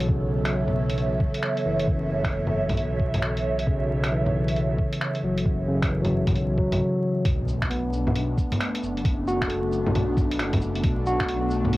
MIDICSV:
0, 0, Header, 1, 6, 480
1, 0, Start_track
1, 0, Key_signature, 2, "minor"
1, 0, Tempo, 447761
1, 95, Time_signature, 4, 2, 24, 8
1, 12620, End_track
2, 0, Start_track
2, 0, Title_t, "Analog synth pad"
2, 0, Program_c, 0, 89
2, 0, Note_on_c, 0, 59, 84
2, 0, Note_on_c, 0, 69, 74
2, 76, Note_on_c, 0, 73, 75
2, 83, Note_on_c, 0, 76, 91
2, 7243, Note_off_c, 0, 73, 0
2, 7247, Note_off_c, 0, 76, 0
2, 7248, Note_off_c, 0, 59, 0
2, 7250, Note_off_c, 0, 69, 0
2, 7770, Note_on_c, 0, 62, 90
2, 7773, Note_on_c, 0, 57, 84
2, 7773, Note_on_c, 0, 59, 76
2, 12620, Note_off_c, 0, 57, 0
2, 12620, Note_off_c, 0, 59, 0
2, 12620, Note_off_c, 0, 62, 0
2, 12620, End_track
3, 0, Start_track
3, 0, Title_t, "Tine electric piano"
3, 0, Program_c, 1, 4
3, 0, Control_c, 1, 64, 127
3, 0, Note_on_c, 1, 50, 71
3, 0, Note_on_c, 1, 52, 65
3, 0, Note_on_c, 1, 54, 72
3, 86, Note_on_c, 1, 49, 55
3, 110, Control_c, 1, 64, 0
3, 118, Note_off_c, 1, 50, 0
3, 293, Note_off_c, 1, 54, 0
3, 295, Note_off_c, 1, 52, 0
3, 317, Control_c, 1, 64, 127
3, 1697, Note_off_c, 1, 49, 0
3, 1776, Note_on_c, 1, 52, 52
3, 3382, Note_off_c, 1, 52, 0
3, 3936, Note_on_c, 1, 49, 66
3, 4414, Note_on_c, 1, 52, 52
3, 5542, Note_off_c, 1, 49, 0
3, 5619, Note_on_c, 1, 54, 58
3, 6021, Note_off_c, 1, 52, 0
3, 6086, Note_on_c, 1, 49, 66
3, 6304, Note_on_c, 1, 52, 50
3, 6435, Note_off_c, 1, 54, 0
3, 6448, Note_on_c, 1, 54, 57
3, 7042, Note_off_c, 1, 54, 0
3, 7055, Note_on_c, 1, 54, 58
3, 7248, Note_off_c, 1, 49, 0
3, 7279, Note_off_c, 1, 54, 0
3, 7281, Note_off_c, 1, 52, 0
3, 7790, Control_c, 1, 64, 0
3, 8008, Control_c, 1, 64, 127
3, 8253, Note_on_c, 1, 59, 66
3, 9860, Note_off_c, 1, 59, 0
3, 9944, Note_on_c, 1, 66, 78
3, 10160, Note_on_c, 1, 69, 52
3, 10672, Note_on_c, 1, 62, 49
3, 11546, Note_off_c, 1, 66, 0
3, 11708, Note_off_c, 1, 69, 0
3, 11867, Note_on_c, 1, 66, 83
3, 12270, Note_off_c, 1, 62, 0
3, 12620, Note_off_c, 1, 66, 0
3, 12620, End_track
4, 0, Start_track
4, 0, Title_t, "Detuned saw bass"
4, 0, Program_c, 2, 39
4, 92, Note_on_c, 2, 35, 96
4, 1283, Note_off_c, 2, 35, 0
4, 1770, Note_on_c, 2, 30, 85
4, 2864, Note_off_c, 2, 30, 0
4, 2881, Note_on_c, 2, 35, 100
4, 3921, Note_off_c, 2, 35, 0
4, 3933, Note_on_c, 2, 35, 99
4, 5123, Note_off_c, 2, 35, 0
4, 5608, Note_on_c, 2, 30, 88
4, 6703, Note_off_c, 2, 30, 0
4, 6722, Note_on_c, 2, 35, 100
4, 7047, Note_off_c, 2, 35, 0
4, 7053, Note_on_c, 2, 35, 80
4, 7294, Note_off_c, 2, 35, 0
4, 7777, Note_on_c, 2, 35, 102
4, 8965, Note_off_c, 2, 35, 0
4, 9466, Note_on_c, 2, 30, 91
4, 10553, Note_off_c, 2, 30, 0
4, 10577, Note_on_c, 2, 35, 102
4, 11143, Note_on_c, 2, 30, 81
4, 11159, Note_off_c, 2, 35, 0
4, 11608, Note_off_c, 2, 30, 0
4, 11621, Note_on_c, 2, 35, 102
4, 12620, Note_off_c, 2, 35, 0
4, 12620, End_track
5, 0, Start_track
5, 0, Title_t, "Impact"
5, 0, Program_c, 3, 103
5, 7770, Note_on_c, 3, 60, 74
5, 9693, Note_off_c, 3, 60, 0
5, 12620, End_track
6, 0, Start_track
6, 0, Title_t, "Drums"
6, 4, Note_on_c, 9, 42, 55
6, 93, Note_on_c, 9, 36, 116
6, 111, Note_off_c, 9, 42, 0
6, 200, Note_off_c, 9, 36, 0
6, 484, Note_on_c, 9, 26, 97
6, 484, Note_on_c, 9, 42, 51
6, 591, Note_off_c, 9, 26, 0
6, 591, Note_off_c, 9, 42, 0
6, 723, Note_on_c, 9, 61, 35
6, 830, Note_off_c, 9, 61, 0
6, 960, Note_on_c, 9, 42, 49
6, 1048, Note_off_c, 9, 42, 0
6, 1048, Note_on_c, 9, 42, 28
6, 1155, Note_off_c, 9, 42, 0
6, 1289, Note_on_c, 9, 36, 98
6, 1396, Note_off_c, 9, 36, 0
6, 1440, Note_on_c, 9, 42, 52
6, 1529, Note_on_c, 9, 26, 98
6, 1547, Note_off_c, 9, 42, 0
6, 1636, Note_off_c, 9, 26, 0
6, 1684, Note_on_c, 9, 42, 41
6, 1791, Note_off_c, 9, 42, 0
6, 1923, Note_on_c, 9, 42, 51
6, 2009, Note_on_c, 9, 36, 110
6, 2030, Note_off_c, 9, 42, 0
6, 2116, Note_off_c, 9, 36, 0
6, 2399, Note_on_c, 9, 36, 92
6, 2406, Note_on_c, 9, 26, 97
6, 2406, Note_on_c, 9, 42, 50
6, 2507, Note_off_c, 9, 36, 0
6, 2513, Note_off_c, 9, 26, 0
6, 2513, Note_off_c, 9, 42, 0
6, 2645, Note_on_c, 9, 61, 35
6, 2752, Note_off_c, 9, 61, 0
6, 2881, Note_on_c, 9, 36, 55
6, 2886, Note_on_c, 9, 42, 49
6, 2886, Note_on_c, 9, 61, 57
6, 2972, Note_off_c, 9, 42, 0
6, 2972, Note_on_c, 9, 42, 27
6, 2988, Note_off_c, 9, 36, 0
6, 2993, Note_off_c, 9, 61, 0
6, 3079, Note_off_c, 9, 42, 0
6, 3211, Note_on_c, 9, 36, 95
6, 3318, Note_off_c, 9, 36, 0
6, 3364, Note_on_c, 9, 42, 53
6, 3364, Note_on_c, 9, 61, 37
6, 3454, Note_on_c, 9, 26, 97
6, 3471, Note_off_c, 9, 42, 0
6, 3471, Note_off_c, 9, 61, 0
6, 3561, Note_off_c, 9, 26, 0
6, 3610, Note_on_c, 9, 42, 40
6, 3717, Note_off_c, 9, 42, 0
6, 3846, Note_on_c, 9, 42, 52
6, 3932, Note_on_c, 9, 36, 109
6, 3953, Note_off_c, 9, 42, 0
6, 4039, Note_off_c, 9, 36, 0
6, 4325, Note_on_c, 9, 26, 97
6, 4325, Note_on_c, 9, 42, 53
6, 4432, Note_off_c, 9, 26, 0
6, 4432, Note_off_c, 9, 42, 0
6, 4565, Note_on_c, 9, 61, 37
6, 4673, Note_off_c, 9, 61, 0
6, 4805, Note_on_c, 9, 42, 51
6, 4893, Note_off_c, 9, 42, 0
6, 4893, Note_on_c, 9, 42, 30
6, 5000, Note_off_c, 9, 42, 0
6, 5131, Note_on_c, 9, 36, 90
6, 5239, Note_off_c, 9, 36, 0
6, 5283, Note_on_c, 9, 42, 55
6, 5375, Note_on_c, 9, 26, 97
6, 5390, Note_off_c, 9, 42, 0
6, 5482, Note_off_c, 9, 26, 0
6, 5522, Note_on_c, 9, 42, 40
6, 5629, Note_off_c, 9, 42, 0
6, 5764, Note_on_c, 9, 42, 55
6, 5849, Note_on_c, 9, 36, 112
6, 5871, Note_off_c, 9, 42, 0
6, 5956, Note_off_c, 9, 36, 0
6, 6242, Note_on_c, 9, 26, 99
6, 6242, Note_on_c, 9, 36, 95
6, 6242, Note_on_c, 9, 42, 55
6, 6349, Note_off_c, 9, 26, 0
6, 6349, Note_off_c, 9, 36, 0
6, 6349, Note_off_c, 9, 42, 0
6, 6479, Note_on_c, 9, 42, 30
6, 6479, Note_on_c, 9, 61, 38
6, 6586, Note_off_c, 9, 42, 0
6, 6586, Note_off_c, 9, 61, 0
6, 6720, Note_on_c, 9, 42, 55
6, 6720, Note_on_c, 9, 61, 61
6, 6721, Note_on_c, 9, 36, 59
6, 6811, Note_off_c, 9, 42, 0
6, 6811, Note_on_c, 9, 42, 31
6, 6827, Note_off_c, 9, 61, 0
6, 6828, Note_off_c, 9, 36, 0
6, 6918, Note_off_c, 9, 42, 0
6, 7050, Note_on_c, 9, 36, 96
6, 7157, Note_off_c, 9, 36, 0
6, 7206, Note_on_c, 9, 42, 58
6, 7206, Note_on_c, 9, 61, 37
6, 7313, Note_off_c, 9, 42, 0
6, 7313, Note_off_c, 9, 61, 0
6, 7774, Note_on_c, 9, 42, 61
6, 7775, Note_on_c, 9, 36, 117
6, 7881, Note_off_c, 9, 42, 0
6, 7882, Note_off_c, 9, 36, 0
6, 8019, Note_on_c, 9, 69, 70
6, 8126, Note_off_c, 9, 69, 0
6, 8167, Note_on_c, 9, 36, 57
6, 8168, Note_on_c, 9, 26, 104
6, 8261, Note_on_c, 9, 42, 56
6, 8275, Note_off_c, 9, 26, 0
6, 8275, Note_off_c, 9, 36, 0
6, 8369, Note_off_c, 9, 42, 0
6, 8499, Note_on_c, 9, 69, 66
6, 8607, Note_off_c, 9, 69, 0
6, 8650, Note_on_c, 9, 61, 67
6, 8742, Note_on_c, 9, 42, 59
6, 8757, Note_off_c, 9, 61, 0
6, 8849, Note_off_c, 9, 42, 0
6, 8978, Note_on_c, 9, 36, 97
6, 8983, Note_on_c, 9, 69, 71
6, 9085, Note_off_c, 9, 36, 0
6, 9090, Note_off_c, 9, 69, 0
6, 9132, Note_on_c, 9, 42, 58
6, 9132, Note_on_c, 9, 61, 57
6, 9225, Note_off_c, 9, 42, 0
6, 9225, Note_on_c, 9, 26, 104
6, 9225, Note_on_c, 9, 42, 55
6, 9239, Note_off_c, 9, 61, 0
6, 9332, Note_off_c, 9, 26, 0
6, 9332, Note_off_c, 9, 42, 0
6, 9379, Note_on_c, 9, 42, 59
6, 9467, Note_on_c, 9, 69, 72
6, 9486, Note_off_c, 9, 42, 0
6, 9574, Note_off_c, 9, 69, 0
6, 9619, Note_on_c, 9, 42, 34
6, 9701, Note_on_c, 9, 36, 125
6, 9702, Note_off_c, 9, 42, 0
6, 9702, Note_on_c, 9, 42, 61
6, 9808, Note_off_c, 9, 36, 0
6, 9809, Note_off_c, 9, 42, 0
6, 9944, Note_on_c, 9, 69, 71
6, 10051, Note_off_c, 9, 69, 0
6, 10092, Note_on_c, 9, 36, 59
6, 10095, Note_on_c, 9, 26, 111
6, 10181, Note_on_c, 9, 42, 56
6, 10200, Note_off_c, 9, 36, 0
6, 10202, Note_off_c, 9, 26, 0
6, 10288, Note_off_c, 9, 42, 0
6, 10424, Note_on_c, 9, 69, 67
6, 10531, Note_off_c, 9, 69, 0
6, 10575, Note_on_c, 9, 61, 65
6, 10668, Note_off_c, 9, 61, 0
6, 10668, Note_on_c, 9, 42, 55
6, 10668, Note_on_c, 9, 61, 52
6, 10775, Note_off_c, 9, 42, 0
6, 10775, Note_off_c, 9, 61, 0
6, 10901, Note_on_c, 9, 36, 104
6, 10908, Note_on_c, 9, 61, 37
6, 10908, Note_on_c, 9, 69, 69
6, 11009, Note_off_c, 9, 36, 0
6, 11015, Note_off_c, 9, 61, 0
6, 11015, Note_off_c, 9, 69, 0
6, 11057, Note_on_c, 9, 42, 60
6, 11142, Note_off_c, 9, 42, 0
6, 11142, Note_on_c, 9, 26, 110
6, 11142, Note_on_c, 9, 42, 57
6, 11249, Note_off_c, 9, 26, 0
6, 11249, Note_off_c, 9, 42, 0
6, 11289, Note_on_c, 9, 42, 57
6, 11289, Note_on_c, 9, 61, 67
6, 11291, Note_on_c, 9, 36, 62
6, 11377, Note_on_c, 9, 69, 68
6, 11396, Note_off_c, 9, 42, 0
6, 11396, Note_off_c, 9, 61, 0
6, 11398, Note_off_c, 9, 36, 0
6, 11484, Note_off_c, 9, 69, 0
6, 11529, Note_on_c, 9, 42, 34
6, 11616, Note_off_c, 9, 42, 0
6, 11616, Note_on_c, 9, 42, 60
6, 11619, Note_on_c, 9, 36, 126
6, 11723, Note_off_c, 9, 42, 0
6, 11726, Note_off_c, 9, 36, 0
6, 11857, Note_on_c, 9, 69, 68
6, 11964, Note_off_c, 9, 69, 0
6, 12006, Note_on_c, 9, 26, 108
6, 12010, Note_on_c, 9, 36, 59
6, 12098, Note_on_c, 9, 42, 56
6, 12113, Note_off_c, 9, 26, 0
6, 12117, Note_off_c, 9, 36, 0
6, 12205, Note_off_c, 9, 42, 0
6, 12333, Note_on_c, 9, 69, 69
6, 12440, Note_off_c, 9, 69, 0
6, 12485, Note_on_c, 9, 61, 62
6, 12574, Note_on_c, 9, 42, 57
6, 12592, Note_off_c, 9, 61, 0
6, 12620, Note_off_c, 9, 42, 0
6, 12620, End_track
0, 0, End_of_file